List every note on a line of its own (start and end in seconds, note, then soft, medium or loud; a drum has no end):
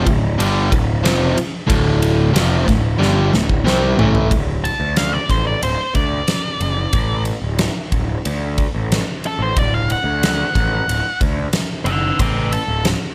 0.06 0.37 D1 medium
0.06 0.33 D2 medium
0.06 0.33 A2 medium
0.06 kick medium
0.06 ride medium
0.38 0.70 G1 medium
0.38 0.71 G2 loud
0.38 0.71 D3 medium
0.38 0.71 G3 loud
0.38 ride medium
0.71 1.02 D1 medium
0.71 0.98 D2 medium
0.71 0.98 A2 medium
0.71 kick medium
0.71 ride medium
1.03 1.36 F1 medium
1.03 1.35 F2 medium
1.03 1.36 C3 loud
1.03 1.36 F3 loud
1.03 snare loud
1.03 ride medium
1.36 muted overdriven electric guitar stroke medium
1.36 muted picked electric bass stroke soft
1.36 ride medium
1.67 2.31 D1 medium
1.67 2.33 D2 medium
1.67 2.33 A2 medium
1.67 2.33 D3 medium
1.67 kick loud
1.67 ride medium
2.02 ride medium
2.33 2.66 F1 medium
2.33 2.65 F2 medium
2.33 2.66 C3 medium
2.33 2.66 F3 loud
2.33 snare loud
2.33 ride loud
2.66 2.99 D1 medium
2.66 2.93 D2 medium
2.66 2.93 A2 medium
2.66 kick medium
2.66 snare soft
2.66 ride medium
2.98 3.31 G1 medium
2.98 3.31 G2 medium
2.98 3.31 D3 loud
2.98 3.32 G3 loud
3.02 snare medium
3.33 3.64 D1 medium
3.33 3.59 D2 medium
3.33 3.59 A2 medium
3.33 snare medium
3.49 kick medium
3.64 3.96 C2 medium
3.64 3.97 C3 medium
3.64 3.98 G3 medium
3.64 3.98 C4 loud
3.64 snare medium
3.97 4.28 A1 medium
3.97 4.30 A2 loud
3.97 4.31 E3 loud
3.97 4.31 A3 loud
3.97 floor tom medium
4.15 floor tom medium
4.31 4.68 D1 loud
4.31 kick loud
4.31 ride medium
4.64 4.96 A5 medium
4.64 ride medium
4.80 5.17 D2 medium
4.96 5.13 F5 medium
4.96 snare loud
4.96 ride medium
5.13 5.30 D5 medium
5.29 5.54 A1 medium
5.29 5.46 C5 medium
5.29 kick medium
5.29 snare soft
5.29 ride medium
5.47 5.63 D5 medium
5.63 5.75 D1 medium
5.63 5.95 C5 medium
5.63 ride medium
5.94 6.20 D2 medium
5.94 7.23 D5 medium
5.94 kick medium
5.94 ride medium
6.28 snare loud
6.28 ride medium
6.61 6.86 F#1 medium
6.61 ride medium
6.93 7.31 A1 loud
6.93 kick loud
6.93 ride medium
7.25 ride medium
7.42 7.67 D1 medium
7.59 snare loud
7.59 ride medium
7.92 8.17 D1 medium
7.92 kick medium
7.92 ride medium
8.25 8.63 D2 medium
8.25 ride medium
8.58 kick medium
8.58 ride medium
8.74 8.99 A1 medium
8.92 snare loud
8.92 ride medium
9.24 9.41 A4 medium
9.24 ride medium
9.39 9.52 A1 medium
9.39 9.58 C5 medium
9.56 9.94 D1 loud
9.56 9.73 D5 medium
9.56 kick loud
9.56 ride medium
9.74 9.90 F5 medium
9.90 11.18 F#5 loud
9.90 ride medium
10.04 10.42 D2 medium
10.23 snare loud
10.23 ride medium
10.55 10.80 A1 medium
10.55 kick medium
10.55 snare soft
10.55 ride medium
10.88 11.00 D1 medium
10.88 ride medium
11.21 11.46 D2 medium
11.21 kick medium
11.21 ride medium
11.53 snare loud
11.53 ride medium
11.85 12.10 F#1 medium
11.85 12.19 D5 medium
11.85 12.18 F#5 medium
11.85 ride medium
12.19 12.57 A1 medium
12.19 12.50 C5 medium
12.19 12.52 E5 loud
12.19 kick loud
12.19 ride medium
12.53 12.84 A4 medium
12.53 ride medium
12.68 12.93 D1 medium
12.85 snare loud
12.85 ride loud